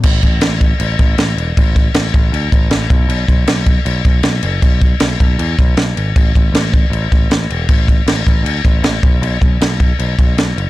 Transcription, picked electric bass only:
\new Staff \with { instrumentName = "Picked electric bass" } { \clef bass \time 4/4 \key b \dorian \tempo 4 = 157 a,,8 a,,8 a,,4 a,,8 a,,8 a,,8 e,,8 | a,,4 a,,8 a,,8 d,8 a,,8 a,,8 b,,8 | b,,8 b,,8 b,,4 b,,8 b,,8 b,,8 fis,,8 | b,,4 b,,8 b,,8 e,8 b,,8 b,,8 gis,,8 |
a,,8 a,,8 a,,4 a,,8 a,,8 a,,8 e,,8 | a,,4 a,,8 a,,8 d,8 a,,8 a,,8 b,,8 | b,,8 b,,8 b,,4 b,,8 b,,8 b,,8 fis,,8 | }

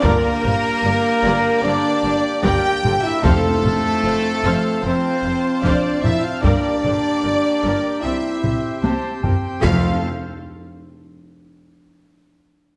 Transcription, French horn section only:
\new Staff \with { instrumentName = "French horn section" } { \time 4/4 \key f \major \tempo 4 = 75 bes2 d'4 g'8. e'16 | a2 c'4 d'8 e'16 f'16 | d'2 e'4 r4 | f'8 r2. r8 | }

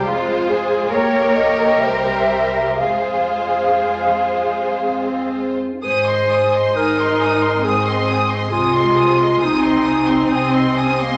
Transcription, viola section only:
\new Staff \with { instrumentName = "Viola section" } { \clef bass \time 3/4 \key f \minor \tempo 4 = 66 aes8 aes8 bes4 g4 | aes2. | \key aes \major r4 ees'4 c'4 | aes4 c'2 | }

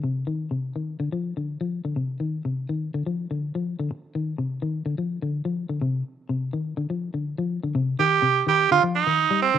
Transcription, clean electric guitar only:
\new Staff \with { instrumentName = "Clean electric guitar" } { \clef bass \time 4/4 \key c \dorian \tempo 4 = 125 c8 ees8 c8 ees8 d16 f8 d8 f8 d16 | c8 ees8 c8 ees8 d16 f8 d8 f8 d16 | r8 ees8 c8 ees8 d16 f8 d8 f8 d16 | c8 r8 c8 ees8 d16 f8 d8 f8 d16 |
c8 ees8 c8 ees8 d16 f8 ees8 g8 d16 | }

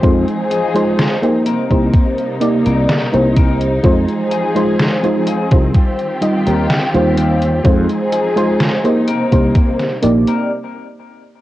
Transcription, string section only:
\new Staff \with { instrumentName = "String section" } { \time 4/4 \key f \minor \tempo 4 = 63 << { <f ees' aes'>4. <c bes ees'>2~ <c bes ees'>8 | <f aes'>2 <ees f' g'>2 | <f ees' aes'>4. <c bes>4. r4 | } \\ { c'4. g2~ g8 | c'1~ | c'4. g4. r4 | } >> }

